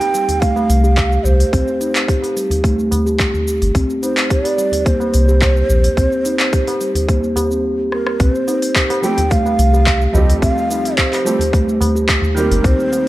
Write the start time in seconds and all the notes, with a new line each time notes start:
Already playing: G5
0.00 G4, open hi-hat, tabla na, shaker
0.13 G3, open hi-hat, tabla tin, shaker
0.29 open hi-hat, tabla ge, shaker
0.40 A3 F5, kick, open hi-hat, shaker
0.56 A3, tabla na, shaker
0.70 C2, open hi-hat, shaker
0.83 G4, tabla na, shaker
0.97 kick, clap, open hi-hat, shaker
1.12 shaker
1.24 C2 C5, tabla ge, shaker
1.40 open hi-hat, shaker
1.53 C2 C4, kick, open hi-hat, shaker
1.67 tabla tin, shaker
1.80 D#4, open hi-hat, tabla na, shaker
1.94 clap, open hi-hat, tabla tin, shaker
2.08 G4, kick, open hi-hat, shaker
2.22 G4, open hi-hat, tabla na, shaker
2.36 G3, open hi-hat, tabla tin, shaker
2.50 open hi-hat, tabla ge, shaker
2.64 A3, kick, open hi-hat, shaker
2.78 A3, shaker
2.91 open hi-hat, tabla na, tabla ge, shaker
3.06 G4, shaker
3.19 kick, clap, open hi-hat, shaker
3.34 tabla ge, shaker
3.48 shaker
3.62 G1, open hi-hat, shaker
3.75 C2 C4, kick, open hi-hat, shaker
3.90 tabla tin, shaker
4.03 D#4 C5, open hi-hat, tabla na, shaker
4.17 clap, open hi-hat, tabla tin, shaker
4.30 G4 D5, kick, open hi-hat, shaker
4.44 G4, open hi-hat, tabla na, shaker
4.58 G3, open hi-hat, tabla tin, shaker
4.72 open hi-hat, tabla ge, shaker
4.85 A#3 C5, kick, open hi-hat, shaker
5.00 A#3, tabla na, shaker
5.14 C2, open hi-hat, shaker
5.28 G4, tabla na, shaker
5.42 kick, clap, open hi-hat, shaker
5.56 shaker
5.69 A#1, tabla ge, shaker
5.84 open hi-hat, shaker
5.97 C2 C4, kick, open hi-hat, shaker
6.11 tabla tin, shaker
6.25 D#4, open hi-hat, tabla na, shaker
6.39 clap, open hi-hat, tabla tin, shaker
6.53 G4, kick, open hi-hat, shaker
6.67 G4, open hi-hat, tabla na, shaker
6.80 G3, open hi-hat, tabla tin, shaker
6.95 open hi-hat, tabla ge, shaker
7.09 A#3, kick, open hi-hat, shaker
7.23 A#3, shaker
7.36 G4, open hi-hat, tabla na, tabla tin, tabla ge, shaker
7.51 C4, shaker
7.92 A#4, cross-stick
8.07 cross-stick
8.20 C2 C4 B4, kick, open hi-hat, shaker
8.34 C5, shaker
8.48 D#4, open hi-hat, tabla na, tabla tin, shaker
8.62 open hi-hat, shaker
8.75 G4, kick, clap, open hi-hat, shaker
8.90 G4, open hi-hat, tabla na, shaker
9.02 F3 G3 A3 C4 G4 G5, open hi-hat, shaker
9.18 open hi-hat, tabla ge, shaker
9.31 A3 F5, kick, open hi-hat, shaker
9.46 A3, tabla na, tabla tin, shaker
9.59 C2, open hi-hat, shaker
9.73 G4, tabla na, tabla tin, shaker
9.87 kick, clap, open hi-hat, shaker
10.01 shaker
10.13 C2 F3 G3 A3 C4 G4 D#5, tabla ge, shaker
10.30 open hi-hat, shaker
10.41 C2 C4 F5, kick, open hi-hat, shaker
10.58 shaker
10.70 D#4, open hi-hat, tabla na, tabla tin, shaker
10.85 open hi-hat, shaker
10.97 G4 C5, kick, clap, open hi-hat, shaker
11.12 G4, clap, open hi-hat, tabla na, shaker
11.24 F3 G3 A3 C4 G4, open hi-hat, shaker
11.39 open hi-hat, tabla ge, shaker
11.52 A3, kick, open hi-hat, tabla tin, shaker
11.68 A3, shaker
11.80 open hi-hat, tabla na, tabla tin, tabla ge, shaker
11.95 G4, shaker
12.09 kick, clap, open hi-hat, shaker
12.22 tabla tin, tabla ge, shaker
12.35 D#3 G3 A#3 C4 A#4, open hi-hat, shaker
12.39 G4
12.51 G1, open hi-hat, tabla tin, shaker
12.64 C2 C4 C5, kick, open hi-hat, shaker
12.80 shaker
12.92 D#4, open hi-hat, tabla na, tabla tin, shaker